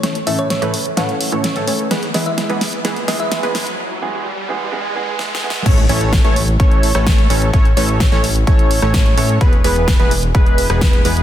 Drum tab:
CC |------------------------------------------------|------------------------------------------------|------------------------------------------------|x-----------------------------------------------|
HH |x--x--o--x--x--x--o--x--x--x--o--x--x--x--o--x--|x--x--o--x--x--x--o--x--x--x--o--x--x--x--o--x--|------------------------------------------------|x--x--o--x--x--x--o-----x--x--o--x--x--x--o--x--|
SD |o-----------o-----------o-----------o-----------|o-----o-----o-----o-----o-----o-----o-----o-----|------------------------------------o---o---o---|------------o--------------------r--o-----------|
BD |------------------------------------------------|------------------------------------------------|------------------------------------------------|o-----------o-----------o-----------o-----------|

CC |------------------------------------------------|------------------------------------------------|
HH |x--x--o--x--x--x--o--x--x--x--o--x--x--x--o--x--|x--x--o--x--x--x--o--x--x--x--o--x--x--x--o--x--|
SD |------------o--o-----------------r--o-----------|------------o--------------------r--o-----------|
BD |o-----------o-----------o-----------o-----------|o-----------o-----------o-----------o-----------|